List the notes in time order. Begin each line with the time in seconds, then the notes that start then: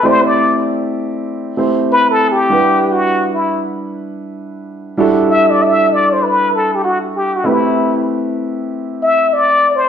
0.03 A3 C4 E4 G4 C5 D5
0.24 D5
1.57 A3 C4 E4 G4 C5
1.92 B4
2.11 A4
2.32 G4
2.49 G3 D4 E4 B4 F#5
2.92 F#4
3.34 E4
4.97 G3 D4 E4 F#4 A4
5.30 E5
5.50 D5
5.62 E5
5.93 D5
6.13 C5
6.22 B4
6.55 A4
6.75 G4
6.84 F#4
7.16 G4
7.36 F#4
7.44 A3 C4 E4 G4 B4
9.03 E5
9.33 D5
9.76 C5